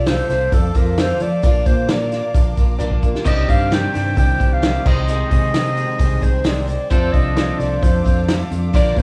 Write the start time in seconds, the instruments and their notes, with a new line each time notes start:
Already playing: fingered electric bass C2, string section A4 F5 D6
0.06 steel-string acoustic guitar F2 D3 F3 A3 C4 F4, upright piano F4 A4 C5 F5, clarinet C5, snare, open hi-hat, shaker
0.29 fingered electric bass C2, steel-string acoustic guitar F3 A3 C4 F4, clarinet C5, snare, open hi-hat, shaker
0.52 fingered electric bass F2, steel-string acoustic guitar F3 A3 C4 F4, upright piano F4 A4 C5 D5, clarinet A4, kick, open hi-hat, shaker
0.75 fingered electric bass F2, steel-string acoustic guitar F3 A3 C4 F4, clarinet A#4, kick, open hi-hat, shaker
0.97 steel-string acoustic guitar F2 D3 F3 A3 C4 F4, upright piano F4 A4 C5 F5, clarinet C5, snare, open hi-hat, shaker
1.20 fingered electric bass F3, steel-string acoustic guitar F3 A3 C4 F4, clarinet D5, open hi-hat, shaker
1.43 fingered electric bass A#1, steel-string acoustic guitar A#2 F3 A#3 D4 F4, upright piano D4 F4 A#4 D5, string section A#4, kick, open hi-hat, shaker
1.66 fingered electric bass A#2, steel-string acoustic guitar A#3 D4 F4, clarinet C5, kick, open hi-hat, shaker
1.88 steel-string acoustic guitar A#2 F3 A#3 D4 F4, upright piano D4 F4 A#4 D5, clarinet D5, snare, open hi-hat, shaker
2.11 steel-string acoustic guitar A#3 D4 F4, snare, open hi-hat, shaker
2.34 fingered electric bass A#1, steel-string acoustic guitar F3 A#3 D4 F4, upright piano D4 F4 A#4 D5, kick, open hi-hat, shaker
2.57 fingered electric bass A#1, steel-string acoustic guitar A#3 D4 F4, kick, open hi-hat, shaker
2.79 steel-string acoustic guitar A#2 F3 A#3 D4 F4, upright piano D4 F4 A#4 D5, kick, shaker
2.92 kick
3.03 steel-string acoustic guitar A#3 D4 F4, kick, shaker
3.15 snare
3.25 fingered electric bass C2, steel-string acoustic guitar C3 D#3 C4 D4 G4, clean electric guitar G3, upright piano D#4 G4 C5 D5, string section C5 G5, clarinet D#5, kick, crash, shaker
3.48 fingered electric bass G2, steel-string acoustic guitar C4 D4 G4, clarinet F5, kick, open hi-hat, shaker
3.71 steel-string acoustic guitar C3 D#3 C4 D4 G4, upright piano D#4 G4 C5 D5, clarinet G5, snare, open hi-hat, shaker
3.94 fingered electric bass G2, steel-string acoustic guitar C4 D4 G4, clarinet G5, snare, open hi-hat, shaker
4.15 fingered electric bass C2, steel-string acoustic guitar D#3 C4 D4 G4, upright piano D#4 G4 C5 D5, clarinet G5, kick, open hi-hat, shaker
4.38 fingered electric bass C2, steel-string acoustic guitar C4 D4 G4, kick, open hi-hat, shaker
4.54 clarinet F5
4.62 steel-string acoustic guitar C3 D#3 C4 D4 G4, upright piano D#4 G4 C5 D5, snare, open hi-hat, shaker
4.85 fingered electric bass C2, clean electric guitar C3 D#3 D#4, steel-string acoustic guitar G#3 C4 G#4, upright piano D#4 G#4 C5 D#5, string section G#4 C6, clarinet D#5, kick, crash, shaker
5.08 steel-string acoustic guitar C3 D#3 G#3 C4 G#4, clarinet D#5, shaker
5.31 fingered electric bass C3, steel-string acoustic guitar G#3 C4 G#4, kick, open hi-hat, shaker
5.54 steel-string acoustic guitar C3 D#3 G#3 C4 G#4, upright piano D#4 G#4 C5 D#5, snare, open hi-hat, shaker
5.77 steel-string acoustic guitar G#3 C4 G#4, open hi-hat, shaker
5.99 fingered electric bass C2, steel-string acoustic guitar D#3 G#3 C4 G#4, upright piano D#4 G#4 C5 D#5, kick, open hi-hat, shaker
6.21 fingered electric bass C2, steel-string acoustic guitar G#3 C4 G#4, clarinet C5, kick, open hi-hat, shaker
6.44 steel-string acoustic guitar C3 D#3 G#3 C4 G#4, upright piano D#4 G#4 C5 D#5, clarinet D5, snare, open hi-hat, shaker
6.67 steel-string acoustic guitar G#3 C4 G#4, clarinet D5, open hi-hat, shaker
6.90 steel-string acoustic guitar F2 C3 F3 A3 D4 F4, fingered electric bass F2, clean electric guitar C4 A4, upright piano F4 A4 C5 D5, string section A4 F5 D6, clarinet C5, kick, open hi-hat, shaker
7.12 fingered electric bass C2, steel-string acoustic guitar F3 A3 D4 F4, clarinet D#5, kick, open hi-hat
7.36 steel-string acoustic guitar F2 C3 F3 A3 D4 F4, upright piano F4 A4 C5 D5, snare, open hi-hat, shaker
7.59 fingered electric bass C2, steel-string acoustic guitar F3 A3 D4 F4, clarinet D5, snare, open hi-hat, shaker
7.81 fingered electric bass F2, steel-string acoustic guitar F3 A3 D4 F4, upright piano F4 A4 C5 D5, clarinet C5, kick, open hi-hat, shaker
8.04 fingered electric bass F2, steel-string acoustic guitar F3 A3 D4 F4, clarinet C5, kick, open hi-hat, shaker
8.28 steel-string acoustic guitar F2 C3 F3 A3 D4 F4, upright piano F4 A4 C5 D5, snare, open hi-hat, shaker
8.51 fingered electric bass F2, steel-string acoustic guitar F3 A3 D4 F4, open hi-hat, shaker
8.73 fingered electric bass A#1, steel-string acoustic guitar A#2 F3 A#3 D4 F4, clean electric guitar D3 A#4, upright piano D4 F4 A#4 D5, string section A#4, clarinet D5, kick, open hi-hat, shaker
8.96 fingered electric bass A#2, steel-string acoustic guitar D4 F4, clarinet C5, kick, open hi-hat, shaker